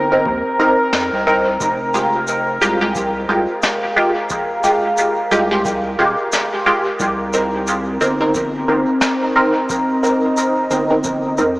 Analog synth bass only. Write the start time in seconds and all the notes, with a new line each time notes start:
Already playing: G1
0.26 D#2
0.93 F2
1.13 C2
1.60 F1
2.61 C2
3.29 C2
5.31 C2
5.99 D#1
7.00 C2
8.01 G1
8.68 G1
10.71 G1
11.38 F2